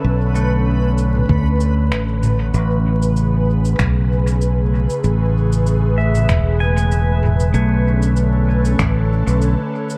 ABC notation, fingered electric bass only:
X:1
M:4/4
L:1/16
Q:"Swing 16ths" 1/4=96
K:A
V:1 name="Fingered electric bass" clef=bass
B,,,8 D,,4 A,,,4 | A,,,8 B,,,6- B,,, z | A,,,8 E,,,8 | B,,,8 A,,,3 B,,,2 z3 |]